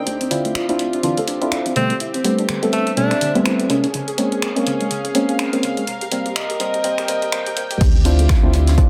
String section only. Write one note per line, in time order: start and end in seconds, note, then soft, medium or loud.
0.00 0.69 C4 medium
0.00 0.75 G5 medium
0.07 3.70 G4 medium
0.43 1.76 F4 medium
0.70 3.70 C4 medium
2.65 3.70 E5 medium
3.70 5.87 G#4 medium
3.80 5.88 C#4 medium
4.57 6.66 F5 medium
5.87 7.81 A#4 medium
6.32 7.81 D#5 medium
6.76 8.49 G5 medium
7.81 8.90 G4 medium
8.07 8.90 F4 medium
8.35 8.90 C4 medium